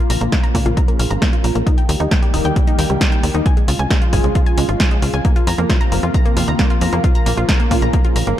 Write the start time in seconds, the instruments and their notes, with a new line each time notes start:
Already playing: analog synth pad C#3 F3 A#3 F4
0.10 analog synth bass A#1, synth arpeggio sound A#5, open hi-hat
0.21 analog synth bass A#1, synth arpeggio sound A#3, closed hi-hat
0.32 synth arpeggio sound F4, kick, snare, closed hi-hat
0.43 synth arpeggio sound A#5, closed hi-hat
0.55 analog synth bass A#2, synth arpeggio sound A#3, kick, open hi-hat
0.66 analog synth bass A#1, synth arpeggio sound F4, closed hi-hat
0.77 synth arpeggio sound A#5, kick, closed hi-hat
0.88 synth arpeggio sound A#3, closed hi-hat
0.99 analog synth bass A#1, synth arpeggio sound F4, open hi-hat
1.10 analog synth bass G#1, synth arpeggio sound A#5, closed hi-hat
1.22 synth arpeggio sound A#3, kick, snare, closed hi-hat
1.33 synth arpeggio sound F4, closed hi-hat
1.44 analog synth bass A#1, synth arpeggio sound A#5, open hi-hat
1.55 analog synth bass A#1, synth arpeggio sound A#3, closed hi-hat
1.66 analog synth pad D#3 G3 A#3 G4, synth arpeggio sound D#4, kick, closed hi-hat
1.78 synth arpeggio sound G5, closed hi-hat
1.89 analog synth bass D#2, synth arpeggio sound G3, open hi-hat
2.00 analog synth bass D#2, synth arpeggio sound D#4, closed hi-hat
2.11 synth arpeggio sound G5, kick, snare, closed hi-hat
2.22 synth arpeggio sound G3, closed hi-hat
2.34 analog synth bass D#1, synth arpeggio sound D#4, open hi-hat
2.45 analog synth bass D#2, synth arpeggio sound G5, closed hi-hat
2.56 synth arpeggio sound G3, kick, closed hi-hat
2.67 synth arpeggio sound D#4, closed hi-hat
2.79 analog synth bass D#2, synth arpeggio sound G5, open hi-hat
2.90 analog synth bass C#2, synth arpeggio sound G3, closed hi-hat
3.01 synth arpeggio sound D#4, kick, snare, closed hi-hat
3.12 synth arpeggio sound G5, closed hi-hat
3.23 analog synth bass D#2, synth arpeggio sound G3, open hi-hat
3.34 analog synth bass D#2, synth arpeggio sound D#4, closed hi-hat
3.46 analog synth pad C#3 F3 G#3 F4, synth arpeggio sound G#5, kick, closed hi-hat
3.57 synth arpeggio sound G#3, closed hi-hat
3.68 analog synth bass C#2, synth arpeggio sound F4, open hi-hat
3.79 analog synth bass C#2, synth arpeggio sound G#5, closed hi-hat
3.90 synth arpeggio sound G#3, kick, snare, closed hi-hat
4.02 synth arpeggio sound F4, closed hi-hat
4.13 analog synth bass G#1, synth arpeggio sound G#5, kick, open hi-hat
4.24 analog synth bass C#2, synth arpeggio sound G#3, closed hi-hat
4.35 synth arpeggio sound F4, kick, closed hi-hat
4.46 synth arpeggio sound G#5, closed hi-hat
4.58 analog synth bass C#2, synth arpeggio sound G#3, open hi-hat
4.69 analog synth bass G#1, synth arpeggio sound F4, closed hi-hat
4.80 synth arpeggio sound G#5, kick, snare, closed hi-hat
4.91 synth arpeggio sound G#3, closed hi-hat
5.02 analog synth bass C#2, synth arpeggio sound F4, open hi-hat
5.14 analog synth bass C#2, synth arpeggio sound G#5, closed hi-hat
5.25 analog synth pad C3 A#3 F4, synth arpeggio sound A#3, kick, closed hi-hat
5.36 synth arpeggio sound F4, closed hi-hat
5.47 analog synth bass F2, synth arpeggio sound A#5, open hi-hat
5.58 analog synth bass F2, synth arpeggio sound A#3, closed hi-hat
5.70 synth arpeggio sound F4, kick, snare, closed hi-hat
5.81 synth arpeggio sound A#5, closed hi-hat
5.92 analog synth bass F1, synth arpeggio sound A#3, open hi-hat
6.03 analog synth bass F2, synth arpeggio sound F4, closed hi-hat
6.14 synth arpeggio sound A#5, kick, closed hi-hat
6.25 synth arpeggio sound A#3, closed hi-hat
6.37 analog synth bass F2, synth arpeggio sound F4, open hi-hat
6.48 analog synth bass D#2, synth arpeggio sound A#5, closed hi-hat
6.59 synth arpeggio sound A#3, kick, snare, closed hi-hat
6.70 synth arpeggio sound F4, closed hi-hat
6.81 analog synth bass F2, synth arpeggio sound A#5, open hi-hat
6.93 analog synth bass F2, synth arpeggio sound A#3, closed hi-hat
7.04 analog synth pad C#3, synth arpeggio sound F4, kick, closed hi-hat
7.15 synth arpeggio sound A#5, closed hi-hat
7.26 analog synth bass A#1, synth arpeggio sound A#3, open hi-hat
7.37 analog synth bass A#1, synth arpeggio sound F4, closed hi-hat
7.49 synth arpeggio sound A#5, kick, snare, closed hi-hat
7.60 synth arpeggio sound A#3, closed hi-hat
7.71 analog synth bass A#2, synth arpeggio sound F4, kick, open hi-hat
7.82 analog synth bass A#1, synth arpeggio sound A#5, closed hi-hat
7.93 synth arpeggio sound A#3, kick, closed hi-hat
8.05 synth arpeggio sound F4, closed hi-hat
8.16 analog synth bass A#1, synth arpeggio sound A#5, open hi-hat
8.27 analog synth bass G#1, synth arpeggio sound A#3, closed hi-hat